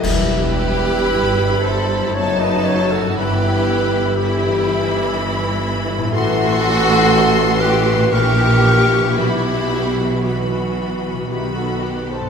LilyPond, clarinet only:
\new Staff \with { instrumentName = "Clarinet" } { \time 3/4 \key e \minor \tempo 4 = 59 b'4. c''8 cis''16 dis''16 cis''16 a'16 | b'4 g'4. r8 | a'4. b'8 ais'4 | g'4 fis'4 g'16 a'16 b'16 c''16 | }